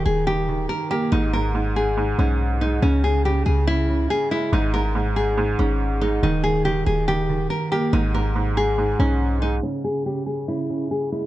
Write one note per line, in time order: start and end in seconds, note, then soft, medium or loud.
0.00 0.27 D#3 medium
0.06 0.67 D#1 loud
0.06 0.25 G#4 medium
0.27 0.47 D#3 medium
0.27 0.67 G4 medium
0.49 1.12 D#3 medium
0.69 0.88 A#4 medium
0.91 1.12 A#3 medium
0.91 1.10 G4 medium
1.12 2.15 G#1 loud
1.12 1.32 G#2 medium
1.12 1.31 D#4 medium
1.33 1.53 G#2 medium
1.33 1.52 A#4 medium
1.55 1.96 G#2 medium
1.76 2.16 G#4 medium
1.97 2.17 G#2 medium
2.19 2.80 B1 loud
2.19 2.83 G#2 medium
2.19 2.59 C#4 medium
2.61 2.83 G#3 medium
2.61 2.80 D#4 medium
2.82 3.44 C#2 loud
2.82 3.03 C#3 medium
2.82 3.01 C#4 medium
3.04 3.23 C#3 medium
3.04 3.23 G#4 medium
3.25 3.66 C#3 medium
3.25 3.44 G4 medium
3.46 4.08 C#2 loud
3.46 3.65 G#4 medium
3.67 3.87 C#3 medium
3.67 4.08 E4 loud
3.89 4.53 C#3 medium
4.10 4.29 G#4 medium
4.31 4.53 G#3 medium
4.31 4.50 E4 medium
4.53 5.55 G#1 loud
4.53 4.73 G#2 loud
4.53 4.72 D#4 medium
4.74 4.94 G#2 medium
4.74 4.93 A#4 medium
4.95 5.36 G#2 medium
5.16 5.56 G#4 medium
5.38 5.57 G#2 loud
5.59 6.20 G#1 loud
5.59 6.23 G#2 medium
5.59 5.99 C#4 medium
6.01 6.23 G#3 medium
6.01 6.21 D#4 medium
6.23 6.84 D#1 loud
6.23 6.43 D#3 loud
6.23 6.42 D#4 medium
6.44 6.64 D#3 medium
6.44 6.63 G#4 medium
6.65 7.07 D#3 medium
6.65 6.84 G4 medium
6.86 7.48 D#1 loud
6.86 7.06 G#4 medium
7.08 7.28 D#3 medium
7.08 7.48 G4 loud
7.29 7.93 D#3 medium
7.50 7.69 A#4 medium
7.72 7.93 A#3 medium
7.72 7.91 G4 medium
7.93 8.95 G#1 loud
7.93 8.13 G#2 medium
7.93 8.12 D#4 medium
8.14 8.34 G#2 medium
8.14 8.33 A#4 medium
8.36 8.77 G#2 medium
8.57 8.97 G#4 medium
8.78 8.98 G#2 medium
8.99 9.61 B1 loud
8.99 9.63 G#2 medium
8.99 9.40 C#4 medium
9.42 9.63 G#3 medium
9.42 9.61 D#4 medium
9.63 9.84 C#3 medium
9.63 9.82 C#4 medium
9.84 10.04 C#3 medium
9.84 10.03 G#4 medium
10.06 10.47 C#3 medium
10.06 10.25 G4 medium
10.26 10.46 G#4 medium
10.48 10.68 C#3 medium
10.48 10.88 E4 medium
10.70 11.26 C#3 medium
10.91 11.10 G#4 medium
11.12 11.26 G#3 medium
11.12 11.26 E4 medium